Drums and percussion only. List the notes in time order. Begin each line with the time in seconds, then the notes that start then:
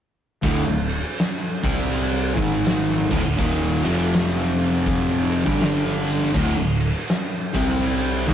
0.43 kick, ride
0.89 ride
1.18 snare, ride
1.64 kick, ride
1.91 ride
2.37 kick, ride
2.65 snare, ride
3.11 kick, crash
3.39 kick
3.85 ride
4.12 snare, ride
4.58 ride
4.86 kick, ride
5.32 ride
5.46 kick
5.60 snare, ride
6.07 ride
6.23 snare
6.34 kick, crash
6.80 ride
7.08 snare, ride
7.54 kick, ride
7.83 ride
8.29 kick, ride